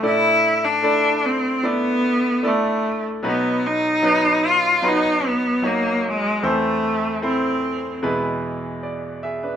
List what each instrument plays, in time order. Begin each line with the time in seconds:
0.02 grand piano A2 A3 D4 E4 A4 D5, cello E4
0.64 cello D4
0.82 grand piano A3 D4 E4 A4 D5
1.26 cello C4
1.63 grand piano A3 D4 E4 A4 D5, cello B3
2.43 grand piano A3 D4 E4 A4 D5
2.47 cello A3
3.23 grand piano B2 F#3 B3 D#4 F#4 B4
3.27 cello B3
3.66 cello D#4
4.03 grand piano F#3 B3 D#4 B4
4.46 cello F4
4.82 grand piano F#3 B3 D#4 F#4 B4
4.87 cello D#4
5.26 cello B3
5.62 grand piano F#3 D#4 F#4 C#5
5.66 cello A#3
6.08 cello G#3
6.43 grand piano E2 E3 A3 C4 E4 A4 C5
6.47 cello A3
7.22 grand piano A3 C4 E4 A4 C5, cello C4
8.02 grand piano E2 B2 G#3 B3 E4 G#4 B4
8.83 grand piano D5
9.23 grand piano G#4 E5
9.43 grand piano D4 B4